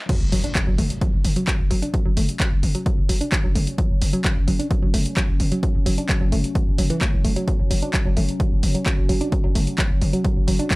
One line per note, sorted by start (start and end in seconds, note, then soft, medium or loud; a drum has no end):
0.09 0.13 F#3 medium
0.09 10.76 F#3 medium
0.09 10.76 C#4 medium
0.09 kick loud
0.09 closed hi-hat medium
0.09 mid tom medium
0.09 crash loud
0.09 impact medium
0.21 0.32 F#1 medium
0.32 0.44 F#1 loud
0.32 0.42 F#3 medium
0.32 open hi-hat loud
0.32 mid tom medium
0.44 0.54 D4 medium
0.44 closed hi-hat medium
0.55 0.62 F#3 medium
0.55 kick loud
0.55 clap loud
0.55 closed hi-hat medium
0.55 mid tom medium
0.67 0.78 F#1 medium
0.67 0.71 F#3 medium
0.78 0.90 F#1 loud
0.78 0.82 A3 medium
0.78 open hi-hat medium
0.78 mid tom medium
0.90 closed hi-hat medium
1.01 1.08 F#3 medium
1.01 kick loud
1.01 closed hi-hat medium
1.01 mid tom medium
1.13 1.24 F#1 medium
1.24 1.36 F#1 loud
1.24 open hi-hat loud
1.24 mid tom medium
1.36 1.43 F#3 medium
1.36 closed hi-hat medium
1.48 1.52 F#3 medium
1.48 kick loud
1.48 clap loud
1.48 closed hi-hat medium
1.48 mid tom medium
1.59 1.70 F#1 medium
1.71 1.82 F#1 loud
1.71 1.81 F#3 medium
1.71 open hi-hat medium
1.71 mid tom medium
1.82 1.92 D4 medium
1.82 closed hi-hat medium
1.94 2.01 F#3 medium
1.94 kick loud
1.94 closed hi-hat medium
1.94 mid tom medium
2.05 2.16 F#1 medium
2.05 2.09 F#3 medium
2.17 2.28 F#1 loud
2.17 2.21 A3 medium
2.17 open hi-hat loud
2.17 mid tom medium
2.29 closed hi-hat medium
2.40 2.47 F#3 medium
2.40 kick loud
2.40 clap loud
2.40 closed hi-hat medium
2.40 mid tom medium
2.52 2.62 F#1 medium
2.63 2.75 F#1 loud
2.63 open hi-hat loud
2.63 mid tom medium
2.75 2.81 F#3 medium
2.75 closed hi-hat medium
2.86 2.90 F#3 medium
2.86 kick loud
2.86 closed hi-hat medium
2.86 mid tom medium
2.98 3.09 F#1 medium
3.09 3.21 F#1 loud
3.09 3.19 F#3 medium
3.09 open hi-hat loud
3.09 mid tom medium
3.21 3.31 D4 medium
3.21 closed hi-hat medium
3.32 3.39 F#3 medium
3.32 kick loud
3.32 clap loud
3.32 closed hi-hat medium
3.32 mid tom medium
3.44 3.55 F#1 medium
3.44 3.48 F#3 medium
3.55 3.67 F#1 loud
3.55 3.59 A3 medium
3.55 open hi-hat loud
3.55 mid tom medium
3.67 closed hi-hat medium
3.78 3.85 F#3 medium
3.78 kick loud
3.78 closed hi-hat medium
3.78 mid tom medium
3.90 4.01 F#1 medium
4.01 4.13 F#1 loud
4.01 open hi-hat loud
4.01 mid tom medium
4.13 4.20 F#3 medium
4.13 closed hi-hat medium
4.24 4.29 F#3 medium
4.24 kick loud
4.24 clap loud
4.24 closed hi-hat medium
4.24 mid tom medium
4.36 4.47 F#1 medium
4.48 4.59 F#1 loud
4.48 4.58 F#3 medium
4.48 open hi-hat loud
4.48 mid tom medium
4.59 4.69 D4 medium
4.59 closed hi-hat medium
4.71 4.77 F#3 medium
4.71 kick loud
4.71 closed hi-hat medium
4.71 mid tom medium
4.82 4.93 F#1 medium
4.82 4.86 F#3 medium
4.94 5.05 F#1 loud
4.94 4.98 A3 medium
4.94 open hi-hat loud
4.94 mid tom medium
5.06 closed hi-hat medium
5.17 5.24 F#3 medium
5.17 kick loud
5.17 clap loud
5.17 closed hi-hat medium
5.17 mid tom medium
5.29 5.39 F#1 medium
5.40 5.51 F#1 loud
5.40 open hi-hat loud
5.40 mid tom medium
5.52 5.58 F#3 medium
5.52 closed hi-hat medium
5.63 5.67 F#3 medium
5.63 kick loud
5.63 closed hi-hat medium
5.63 mid tom medium
5.75 5.85 F#1 medium
5.86 5.98 F#1 loud
5.86 5.96 F#3 medium
5.86 open hi-hat loud
5.86 mid tom medium
5.98 6.08 D4 medium
5.98 closed hi-hat medium
6.09 6.16 F#3 medium
6.09 kick loud
6.09 clap loud
6.09 closed hi-hat medium
6.09 mid tom medium
6.21 6.31 F#1 medium
6.21 6.25 F#3 medium
6.32 6.44 F#1 loud
6.32 6.36 A3 medium
6.32 open hi-hat loud
6.32 mid tom medium
6.44 closed hi-hat medium
6.55 6.62 F#3 medium
6.55 kick loud
6.55 closed hi-hat medium
6.55 mid tom medium
6.67 6.78 F#1 medium
6.78 6.90 F#1 loud
6.78 6.89 F#3 medium
6.78 open hi-hat loud
6.78 mid tom medium
6.90 7.00 E3 loud
6.90 closed hi-hat medium
7.01 7.08 A3 medium
7.01 kick loud
7.01 clap loud
7.01 closed hi-hat medium
7.01 mid tom medium
7.13 7.24 F#1 medium
7.24 7.36 F#1 loud
7.24 7.31 A3 medium
7.24 open hi-hat medium
7.24 mid tom medium
7.36 7.46 F#3 medium
7.36 closed hi-hat medium
7.48 7.52 F#3 medium
7.48 kick loud
7.48 closed hi-hat medium
7.48 mid tom loud
7.59 7.70 F#1 medium
7.71 7.82 F#1 loud
7.71 7.81 F#3 medium
7.71 open hi-hat loud
7.71 mid tom medium
7.82 7.92 D4 medium
7.82 closed hi-hat medium
7.94 8.01 F#3 medium
7.94 kick loud
7.94 clap loud
7.94 closed hi-hat medium
7.94 mid tom medium
8.05 8.16 F#1 medium
8.05 8.09 F#3 medium
8.17 8.28 F#1 loud
8.17 8.21 A3 medium
8.17 open hi-hat medium
8.17 mid tom medium
8.29 closed hi-hat medium
8.40 8.47 F#3 medium
8.40 kick loud
8.40 closed hi-hat medium
8.40 mid tom medium
8.52 8.62 F#1 medium
8.63 8.75 F#1 loud
8.63 open hi-hat loud
8.63 mid tom medium
8.75 8.81 F#3 medium
8.75 closed hi-hat medium
8.86 8.90 F#3 medium
8.86 kick loud
8.86 clap loud
8.86 closed hi-hat medium
8.86 mid tom loud
8.98 9.08 F#1 medium
9.09 9.21 F#1 loud
9.09 9.19 F#3 medium
9.09 open hi-hat medium
9.09 mid tom medium
9.21 9.31 D4 medium
9.21 closed hi-hat medium
9.32 9.39 F#3 medium
9.32 kick loud
9.32 closed hi-hat medium
9.32 mid tom loud
9.44 9.55 F#1 medium
9.44 9.48 F#3 medium
9.55 9.67 F#1 loud
9.55 9.59 A3 medium
9.55 open hi-hat loud
9.55 mid tom loud
9.67 closed hi-hat medium
9.78 9.85 F#3 medium
9.78 kick loud
9.78 clap loud
9.78 closed hi-hat medium
9.78 mid tom medium
9.90 10.01 F#1 medium
10.01 10.13 F#1 loud
10.01 open hi-hat medium
10.01 mid tom loud
10.13 10.20 F#3 medium
10.13 closed hi-hat medium
10.24 10.29 F#3 medium
10.24 kick loud
10.24 closed hi-hat medium
10.24 mid tom loud
10.36 10.47 F#1 medium
10.48 10.59 F#1 loud
10.48 10.58 F#3 medium
10.48 open hi-hat loud
10.48 mid tom medium
10.59 10.69 D4 medium
10.59 closed hi-hat medium
10.71 10.76 F#3 medium
10.71 kick loud
10.71 clap loud
10.71 closed hi-hat medium
10.71 mid tom loud